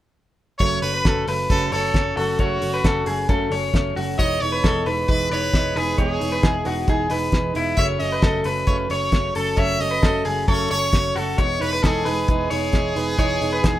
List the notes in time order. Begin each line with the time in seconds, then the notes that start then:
0.59 F#1 F#2 C#3 F#3 A3 C#4 C#5, kick, closed hi-hat
0.82 F#1 F#3 A3 C#4 B4, open hi-hat
0.94 B4
1.05 F#1 C#3 F#3 A3 C#4 A4, kick, snare, closed hi-hat
1.27 F#1 F#3 A3 C#4 B4, open hi-hat
1.50 F#1 F#2 C#3 F#3 A3 C#4 A4, kick, closed hi-hat
1.72 F#1 F#3 A3 C#4 A4 C#5, open hi-hat
1.94 F#1 C#3 F#3 A3 C#4, kick, snare, closed hi-hat
2.17 F#1 F#3 A3 C#4 F#4 A4, open hi-hat
2.39 F#1 F#2 C#3 F#3 A3 C#4 F#4 C#5, kick, closed hi-hat
2.61 F#1 F#3 A3 C#4, open hi-hat
2.74 B4
2.83 F#1 C#3 F#3 A3 C#4 A4, kick, snare, closed hi-hat
3.06 F#1 F#3 A3 C#4 G#4, open hi-hat
3.28 F#1 F#2 C#3 F#3 A3 C#4 A4, kick, closed hi-hat
3.51 F#1 F#3 A3 C#4 C#5, open hi-hat
3.72 F#1 C#3 F#3 A3 C#4, kick, snare, closed hi-hat
3.95 F#1 F#3 A3 C#4 F#4, open hi-hat
4.18 E1 E3 G#3 B3 D#4 C#5 D#5, kick, closed hi-hat
4.41 E1 G#3 B3 D#4 C#5, open hi-hat
4.52 B4
4.64 E1 E3 G#3 B3 D#4 A4, kick, snare, closed hi-hat
4.85 E1 G#3 B3 D#4 B4, open hi-hat
5.08 E1 E3 G#3 B3 D#4 B4, kick, closed hi-hat
5.31 E1 G#3 B3 D#4 B4 C#5, open hi-hat
5.53 E1 E3 G#3 B3 D#4, kick, snare, closed hi-hat
5.76 E1 G#3 B3 D#4 G#4 B4, open hi-hat
5.98 E1 E3 G#3 B3 D#4 G#4 C#5, kick, closed hi-hat
6.21 E1 G#3 B3 D#4, open hi-hat
6.32 B4
6.43 E1 E3 G#3 B3 D#4 G#4, kick, snare, closed hi-hat
6.64 E1 G#3 B3 D#4 F#4, open hi-hat
6.87 E1 E3 G#3 B3 D#4 G#4, kick, closed hi-hat
7.10 E1 G#3 B3 D#4 B4, open hi-hat
7.32 E1 E3 G#3 B3 D#4, kick, snare, closed hi-hat
7.54 E1 G#3 B3 D#4 E4, open hi-hat
7.77 F#1 F#2 C#3 F#3 A3 C#4 C#5 E5, kick, closed hi-hat
7.99 F#1 F#3 A3 C#4 D#5, open hi-hat
8.12 B4
8.22 F#1 C#3 F#3 A3 C#4 A4, kick, snare, closed hi-hat
8.44 F#1 F#3 A3 C#4 B4, open hi-hat
8.67 F#1 F#2 C#3 F#3 A3 C#4 C#5, kick, closed hi-hat
8.89 F#1 F#3 A3 C#4 C#5, open hi-hat
9.12 F#1 C#3 F#3 A3 C#4, kick, snare, closed hi-hat
9.35 F#1 F#3 A3 C#4 A4, open hi-hat
9.57 F#1 F#2 C#3 F#3 A3 C#4 C#5 E5, kick, closed hi-hat
9.79 F#1 F#3 A3 C#4 D#5, open hi-hat
9.91 B4
10.02 F#1 C#3 F#3 A3 C#4 A4, kick, snare, closed hi-hat
10.25 F#1 F#3 A3 C#4 G#4, open hi-hat
10.48 F#1 F#2 C#3 F#3 A3 C#4 A4 C#5, kick, closed hi-hat
10.70 F#1 F#3 A3 C#4 C#5, open hi-hat
10.93 F#1 C#3 F#3 A3 C#4, kick, snare, closed hi-hat
11.15 F#1 F#3 A3 C#4 F#4 A4, open hi-hat
11.38 E1 E3 G#3 B3 D#4 C#5, kick, closed hi-hat
11.60 E1 G#3 B3 D#4 B4, open hi-hat
11.73 B4
11.83 E1 E3 G#3 B3 D#4 G#4 A4, kick, snare, closed hi-hat
12.05 E1 G#3 B3 D#4 B4, open hi-hat
12.28 E1 E3 G#3 B3 D#4 G#4, kick, closed hi-hat
12.50 E1 G#3 B3 D#4 C#5, open hi-hat
12.73 E1 E3 G#3 B3 D#4, kick, snare, closed hi-hat
12.95 E1 G#3 B3 D#4 B4, open hi-hat
13.17 E1 E3 G#3 B3 D#4 C#5, kick, closed hi-hat
13.41 E1 G#3 B3 D#4, open hi-hat
13.53 B4
13.62 E1 E3 G#3 B3 D#4 G#4, kick, snare, closed hi-hat